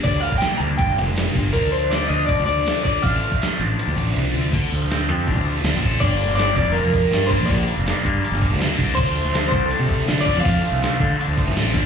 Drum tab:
CC |----------------|----------------|----------------|x---------------|
RD |x-x-x-x-x-x-x-x-|x-x-x-x-x-x-x-x-|x-x-x-x-x-x-x-x-|----------------|
HH |----------------|----------------|----------------|o---o---o---o---|
SD |----o-------o---|----o-------o---|----o-----------|----o-------o---|
BD |o--o----o-----o-|o-------o-----o-|o--o------------|o-------o-----o-|

CC |x---------------|----------------|x---------------|----------------|
RD |----------------|----------------|----------------|----------------|
HH |o-o-o-o-o-o-o-o-|o-o-o-o-o-o-o-o-|--o-o-o-o-o-o-o-|o-o-o-o-o-o-o-o-|
SD |----o-------o---|----o-------o---|----o-------o---|----o-------o---|
BD |o-----o---o---o-|o-----o---o---o-|o-----o---o---o-|o-----o---o---o-|